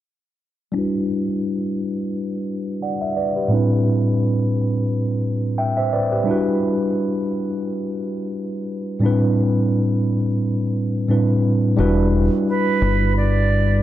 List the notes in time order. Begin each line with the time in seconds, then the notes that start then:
0.72 G3 D4 E4
0.77 F#4 B4
2.82 D5 F#5
3.01 E5
3.17 B4 D5
3.36 G4 B4
3.48 A2 G3 C4
3.52 D4 E4 B4
5.58 E5 G5
5.77 C5 E5
5.93 B4 D5
6.12 G4 B4
6.24 G3 D4 E4
6.29 F#4 B4
8.99 A2 G3 C4 D4
9.05 E4 B4
11.08 A2 G3 C4 D4 E4 B4
11.77 E1 G3 D4 E4 F#4 B4
12.48 B4
12.82 G1
13.16 D5